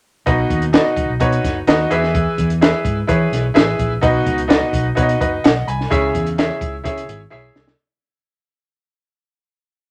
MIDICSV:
0, 0, Header, 1, 4, 480
1, 0, Start_track
1, 0, Key_signature, 5, "major"
1, 0, Tempo, 469116
1, 277, Time_signature, 4, 2, 24, 8
1, 10139, End_track
2, 0, Start_track
2, 0, Title_t, "Grand piano"
2, 0, Program_c, 0, 0
2, 266, Note_on_c, 0, 63, 76
2, 270, Note_on_c, 0, 66, 63
2, 272, Note_on_c, 0, 71, 67
2, 273, Note_on_c, 0, 47, 63
2, 281, Note_on_c, 0, 75, 81
2, 632, Note_off_c, 0, 63, 0
2, 634, Note_off_c, 0, 66, 0
2, 635, Note_off_c, 0, 71, 0
2, 640, Note_off_c, 0, 75, 0
2, 746, Note_on_c, 0, 63, 76
2, 752, Note_on_c, 0, 66, 67
2, 756, Note_on_c, 0, 71, 66
2, 760, Note_on_c, 0, 74, 62
2, 816, Note_off_c, 0, 74, 0
2, 819, Note_on_c, 0, 75, 72
2, 953, Note_off_c, 0, 47, 0
2, 1112, Note_off_c, 0, 63, 0
2, 1115, Note_off_c, 0, 66, 0
2, 1117, Note_off_c, 0, 71, 0
2, 1149, Note_off_c, 0, 75, 0
2, 1225, Note_on_c, 0, 63, 67
2, 1232, Note_on_c, 0, 66, 62
2, 1237, Note_on_c, 0, 71, 63
2, 1243, Note_on_c, 0, 73, 74
2, 1592, Note_off_c, 0, 63, 0
2, 1596, Note_off_c, 0, 66, 0
2, 1598, Note_off_c, 0, 71, 0
2, 1601, Note_off_c, 0, 73, 0
2, 1712, Note_on_c, 0, 63, 75
2, 1715, Note_on_c, 0, 66, 73
2, 1720, Note_on_c, 0, 71, 70
2, 1728, Note_on_c, 0, 75, 80
2, 1943, Note_off_c, 0, 71, 0
2, 1946, Note_on_c, 0, 64, 75
2, 1950, Note_on_c, 0, 68, 73
2, 1952, Note_on_c, 0, 52, 65
2, 1955, Note_off_c, 0, 63, 0
2, 1956, Note_off_c, 0, 66, 0
2, 1959, Note_on_c, 0, 71, 73
2, 1963, Note_off_c, 0, 75, 0
2, 1966, Note_on_c, 0, 76, 88
2, 2529, Note_off_c, 0, 64, 0
2, 2531, Note_off_c, 0, 68, 0
2, 2535, Note_off_c, 0, 71, 0
2, 2539, Note_off_c, 0, 76, 0
2, 2636, Note_off_c, 0, 52, 0
2, 2673, Note_on_c, 0, 64, 75
2, 2676, Note_on_c, 0, 68, 62
2, 2685, Note_on_c, 0, 71, 68
2, 2689, Note_on_c, 0, 76, 78
2, 3039, Note_off_c, 0, 64, 0
2, 3040, Note_off_c, 0, 68, 0
2, 3045, Note_off_c, 0, 71, 0
2, 3046, Note_off_c, 0, 76, 0
2, 3145, Note_on_c, 0, 64, 75
2, 3153, Note_on_c, 0, 68, 63
2, 3155, Note_on_c, 0, 71, 65
2, 3160, Note_on_c, 0, 73, 71
2, 3515, Note_off_c, 0, 64, 0
2, 3520, Note_off_c, 0, 68, 0
2, 3521, Note_off_c, 0, 71, 0
2, 3523, Note_off_c, 0, 73, 0
2, 3623, Note_on_c, 0, 64, 78
2, 3630, Note_on_c, 0, 68, 78
2, 3637, Note_on_c, 0, 71, 72
2, 3642, Note_on_c, 0, 76, 94
2, 3995, Note_off_c, 0, 64, 0
2, 3999, Note_off_c, 0, 68, 0
2, 4003, Note_off_c, 0, 71, 0
2, 4005, Note_off_c, 0, 76, 0
2, 4107, Note_on_c, 0, 63, 82
2, 4115, Note_on_c, 0, 66, 72
2, 4117, Note_on_c, 0, 47, 67
2, 4118, Note_on_c, 0, 71, 76
2, 4122, Note_on_c, 0, 75, 88
2, 4479, Note_off_c, 0, 63, 0
2, 4482, Note_off_c, 0, 66, 0
2, 4484, Note_off_c, 0, 71, 0
2, 4486, Note_off_c, 0, 75, 0
2, 4581, Note_on_c, 0, 63, 77
2, 4590, Note_on_c, 0, 66, 71
2, 4593, Note_on_c, 0, 71, 67
2, 4601, Note_on_c, 0, 74, 66
2, 4660, Note_on_c, 0, 75, 74
2, 4662, Note_off_c, 0, 74, 0
2, 4803, Note_off_c, 0, 47, 0
2, 4956, Note_off_c, 0, 63, 0
2, 4961, Note_off_c, 0, 66, 0
2, 4962, Note_off_c, 0, 71, 0
2, 4996, Note_off_c, 0, 75, 0
2, 5066, Note_on_c, 0, 63, 65
2, 5074, Note_on_c, 0, 66, 62
2, 5081, Note_on_c, 0, 71, 63
2, 5083, Note_on_c, 0, 73, 59
2, 5143, Note_on_c, 0, 75, 73
2, 5144, Note_off_c, 0, 73, 0
2, 5311, Note_off_c, 0, 75, 0
2, 5315, Note_off_c, 0, 71, 0
2, 5326, Note_on_c, 0, 75, 66
2, 5331, Note_on_c, 0, 71, 58
2, 5439, Note_off_c, 0, 63, 0
2, 5444, Note_off_c, 0, 66, 0
2, 5556, Note_off_c, 0, 75, 0
2, 5559, Note_off_c, 0, 71, 0
2, 5568, Note_on_c, 0, 78, 69
2, 5576, Note_on_c, 0, 75, 58
2, 5798, Note_off_c, 0, 78, 0
2, 5802, Note_off_c, 0, 75, 0
2, 5808, Note_on_c, 0, 83, 59
2, 5812, Note_on_c, 0, 80, 54
2, 6039, Note_on_c, 0, 64, 72
2, 6043, Note_on_c, 0, 68, 72
2, 6047, Note_on_c, 0, 49, 66
2, 6050, Note_on_c, 0, 73, 74
2, 6055, Note_on_c, 0, 76, 88
2, 6266, Note_off_c, 0, 83, 0
2, 6268, Note_off_c, 0, 80, 0
2, 6406, Note_off_c, 0, 64, 0
2, 6408, Note_off_c, 0, 68, 0
2, 6412, Note_off_c, 0, 73, 0
2, 6414, Note_off_c, 0, 76, 0
2, 6529, Note_on_c, 0, 64, 73
2, 6534, Note_on_c, 0, 68, 64
2, 6538, Note_on_c, 0, 73, 62
2, 6545, Note_on_c, 0, 76, 75
2, 6729, Note_off_c, 0, 49, 0
2, 6891, Note_off_c, 0, 64, 0
2, 6893, Note_off_c, 0, 68, 0
2, 6896, Note_off_c, 0, 73, 0
2, 6899, Note_off_c, 0, 76, 0
2, 6995, Note_on_c, 0, 64, 72
2, 7002, Note_on_c, 0, 68, 62
2, 7006, Note_on_c, 0, 73, 62
2, 7015, Note_on_c, 0, 76, 77
2, 7363, Note_off_c, 0, 64, 0
2, 7367, Note_off_c, 0, 68, 0
2, 7369, Note_off_c, 0, 73, 0
2, 7373, Note_off_c, 0, 76, 0
2, 7473, Note_on_c, 0, 64, 77
2, 7480, Note_on_c, 0, 68, 74
2, 7489, Note_on_c, 0, 73, 67
2, 7492, Note_on_c, 0, 76, 80
2, 7842, Note_off_c, 0, 64, 0
2, 7845, Note_off_c, 0, 68, 0
2, 7850, Note_off_c, 0, 73, 0
2, 7851, Note_off_c, 0, 76, 0
2, 10139, End_track
3, 0, Start_track
3, 0, Title_t, "Fingered electric bass"
3, 0, Program_c, 1, 33
3, 275, Note_on_c, 1, 35, 94
3, 449, Note_off_c, 1, 35, 0
3, 515, Note_on_c, 1, 39, 79
3, 777, Note_off_c, 1, 39, 0
3, 984, Note_on_c, 1, 37, 87
3, 1075, Note_off_c, 1, 37, 0
3, 1112, Note_on_c, 1, 35, 69
3, 1201, Note_off_c, 1, 35, 0
3, 1235, Note_on_c, 1, 47, 86
3, 1409, Note_off_c, 1, 47, 0
3, 1477, Note_on_c, 1, 30, 86
3, 1651, Note_off_c, 1, 30, 0
3, 1711, Note_on_c, 1, 39, 90
3, 1888, Note_off_c, 1, 39, 0
3, 1953, Note_on_c, 1, 40, 97
3, 2303, Note_off_c, 1, 40, 0
3, 2435, Note_on_c, 1, 40, 72
3, 2785, Note_off_c, 1, 40, 0
3, 2914, Note_on_c, 1, 44, 94
3, 3091, Note_off_c, 1, 44, 0
3, 3156, Note_on_c, 1, 52, 87
3, 3332, Note_off_c, 1, 52, 0
3, 3396, Note_on_c, 1, 35, 84
3, 3573, Note_off_c, 1, 35, 0
3, 3633, Note_on_c, 1, 33, 94
3, 3811, Note_off_c, 1, 33, 0
3, 3882, Note_on_c, 1, 34, 84
3, 4057, Note_off_c, 1, 34, 0
3, 4124, Note_on_c, 1, 35, 93
3, 4299, Note_off_c, 1, 35, 0
3, 4359, Note_on_c, 1, 37, 74
3, 4711, Note_off_c, 1, 37, 0
3, 4838, Note_on_c, 1, 35, 93
3, 5016, Note_off_c, 1, 35, 0
3, 5086, Note_on_c, 1, 47, 97
3, 5262, Note_off_c, 1, 47, 0
3, 5333, Note_on_c, 1, 30, 75
3, 5506, Note_off_c, 1, 30, 0
3, 5575, Note_on_c, 1, 35, 80
3, 5748, Note_off_c, 1, 35, 0
3, 5808, Note_on_c, 1, 36, 80
3, 5983, Note_off_c, 1, 36, 0
3, 6050, Note_on_c, 1, 37, 89
3, 6225, Note_off_c, 1, 37, 0
3, 6292, Note_on_c, 1, 40, 71
3, 6640, Note_off_c, 1, 40, 0
3, 6762, Note_on_c, 1, 37, 85
3, 6939, Note_off_c, 1, 37, 0
3, 7011, Note_on_c, 1, 49, 85
3, 7185, Note_off_c, 1, 49, 0
3, 7248, Note_on_c, 1, 32, 87
3, 7423, Note_off_c, 1, 32, 0
3, 7489, Note_on_c, 1, 35, 82
3, 7663, Note_off_c, 1, 35, 0
3, 7728, Note_on_c, 1, 36, 81
3, 7902, Note_off_c, 1, 36, 0
3, 10139, End_track
4, 0, Start_track
4, 0, Title_t, "Drums"
4, 274, Note_on_c, 9, 42, 66
4, 276, Note_on_c, 9, 36, 92
4, 377, Note_off_c, 9, 42, 0
4, 378, Note_off_c, 9, 36, 0
4, 514, Note_on_c, 9, 36, 67
4, 516, Note_on_c, 9, 42, 58
4, 617, Note_off_c, 9, 36, 0
4, 618, Note_off_c, 9, 42, 0
4, 633, Note_on_c, 9, 42, 49
4, 735, Note_off_c, 9, 42, 0
4, 752, Note_on_c, 9, 42, 88
4, 757, Note_on_c, 9, 38, 103
4, 854, Note_off_c, 9, 42, 0
4, 859, Note_off_c, 9, 38, 0
4, 987, Note_on_c, 9, 36, 76
4, 990, Note_on_c, 9, 42, 60
4, 1090, Note_off_c, 9, 36, 0
4, 1092, Note_off_c, 9, 42, 0
4, 1231, Note_on_c, 9, 42, 86
4, 1234, Note_on_c, 9, 36, 83
4, 1334, Note_off_c, 9, 42, 0
4, 1337, Note_off_c, 9, 36, 0
4, 1355, Note_on_c, 9, 42, 51
4, 1457, Note_off_c, 9, 42, 0
4, 1478, Note_on_c, 9, 36, 75
4, 1481, Note_on_c, 9, 42, 65
4, 1485, Note_on_c, 9, 38, 34
4, 1580, Note_off_c, 9, 36, 0
4, 1583, Note_off_c, 9, 42, 0
4, 1587, Note_off_c, 9, 38, 0
4, 1713, Note_on_c, 9, 42, 81
4, 1725, Note_on_c, 9, 38, 97
4, 1815, Note_off_c, 9, 42, 0
4, 1828, Note_off_c, 9, 38, 0
4, 1954, Note_on_c, 9, 42, 59
4, 2056, Note_off_c, 9, 42, 0
4, 2080, Note_on_c, 9, 38, 31
4, 2182, Note_off_c, 9, 38, 0
4, 2196, Note_on_c, 9, 42, 69
4, 2197, Note_on_c, 9, 36, 91
4, 2299, Note_off_c, 9, 36, 0
4, 2299, Note_off_c, 9, 42, 0
4, 2437, Note_on_c, 9, 42, 59
4, 2438, Note_on_c, 9, 36, 66
4, 2539, Note_off_c, 9, 42, 0
4, 2540, Note_off_c, 9, 36, 0
4, 2559, Note_on_c, 9, 42, 49
4, 2661, Note_off_c, 9, 42, 0
4, 2683, Note_on_c, 9, 42, 91
4, 2688, Note_on_c, 9, 38, 101
4, 2785, Note_off_c, 9, 42, 0
4, 2790, Note_off_c, 9, 38, 0
4, 2913, Note_on_c, 9, 36, 84
4, 2919, Note_on_c, 9, 42, 65
4, 3015, Note_off_c, 9, 36, 0
4, 3021, Note_off_c, 9, 42, 0
4, 3159, Note_on_c, 9, 42, 80
4, 3160, Note_on_c, 9, 36, 79
4, 3261, Note_off_c, 9, 42, 0
4, 3262, Note_off_c, 9, 36, 0
4, 3406, Note_on_c, 9, 42, 70
4, 3410, Note_on_c, 9, 38, 33
4, 3509, Note_off_c, 9, 42, 0
4, 3513, Note_off_c, 9, 38, 0
4, 3639, Note_on_c, 9, 42, 73
4, 3652, Note_on_c, 9, 38, 110
4, 3742, Note_off_c, 9, 42, 0
4, 3754, Note_off_c, 9, 38, 0
4, 3881, Note_on_c, 9, 42, 57
4, 3882, Note_on_c, 9, 36, 74
4, 3983, Note_off_c, 9, 42, 0
4, 3984, Note_off_c, 9, 36, 0
4, 4120, Note_on_c, 9, 42, 71
4, 4123, Note_on_c, 9, 36, 99
4, 4222, Note_off_c, 9, 42, 0
4, 4225, Note_off_c, 9, 36, 0
4, 4363, Note_on_c, 9, 42, 59
4, 4364, Note_on_c, 9, 36, 68
4, 4465, Note_off_c, 9, 42, 0
4, 4466, Note_off_c, 9, 36, 0
4, 4480, Note_on_c, 9, 42, 49
4, 4582, Note_off_c, 9, 42, 0
4, 4606, Note_on_c, 9, 42, 94
4, 4611, Note_on_c, 9, 38, 102
4, 4708, Note_off_c, 9, 42, 0
4, 4713, Note_off_c, 9, 38, 0
4, 4840, Note_on_c, 9, 36, 77
4, 4845, Note_on_c, 9, 42, 65
4, 4942, Note_off_c, 9, 36, 0
4, 4948, Note_off_c, 9, 42, 0
4, 5084, Note_on_c, 9, 42, 86
4, 5088, Note_on_c, 9, 36, 87
4, 5187, Note_off_c, 9, 42, 0
4, 5190, Note_off_c, 9, 36, 0
4, 5208, Note_on_c, 9, 42, 49
4, 5310, Note_off_c, 9, 42, 0
4, 5332, Note_on_c, 9, 36, 80
4, 5335, Note_on_c, 9, 42, 64
4, 5434, Note_off_c, 9, 36, 0
4, 5437, Note_off_c, 9, 42, 0
4, 5569, Note_on_c, 9, 42, 83
4, 5582, Note_on_c, 9, 38, 109
4, 5672, Note_off_c, 9, 42, 0
4, 5684, Note_off_c, 9, 38, 0
4, 5813, Note_on_c, 9, 42, 64
4, 5916, Note_off_c, 9, 42, 0
4, 5941, Note_on_c, 9, 38, 31
4, 6044, Note_off_c, 9, 38, 0
4, 6053, Note_on_c, 9, 36, 98
4, 6056, Note_on_c, 9, 42, 73
4, 6155, Note_off_c, 9, 36, 0
4, 6158, Note_off_c, 9, 42, 0
4, 6290, Note_on_c, 9, 42, 57
4, 6291, Note_on_c, 9, 36, 68
4, 6392, Note_off_c, 9, 42, 0
4, 6394, Note_off_c, 9, 36, 0
4, 6409, Note_on_c, 9, 42, 51
4, 6512, Note_off_c, 9, 42, 0
4, 6532, Note_on_c, 9, 42, 84
4, 6537, Note_on_c, 9, 38, 102
4, 6634, Note_off_c, 9, 42, 0
4, 6639, Note_off_c, 9, 38, 0
4, 6764, Note_on_c, 9, 36, 89
4, 6768, Note_on_c, 9, 42, 61
4, 6867, Note_off_c, 9, 36, 0
4, 6870, Note_off_c, 9, 42, 0
4, 7011, Note_on_c, 9, 36, 83
4, 7013, Note_on_c, 9, 42, 83
4, 7113, Note_off_c, 9, 36, 0
4, 7116, Note_off_c, 9, 42, 0
4, 7136, Note_on_c, 9, 42, 54
4, 7239, Note_off_c, 9, 42, 0
4, 7254, Note_on_c, 9, 42, 72
4, 7356, Note_off_c, 9, 42, 0
4, 7735, Note_on_c, 9, 38, 76
4, 7837, Note_off_c, 9, 38, 0
4, 7854, Note_on_c, 9, 38, 80
4, 7956, Note_off_c, 9, 38, 0
4, 10139, End_track
0, 0, End_of_file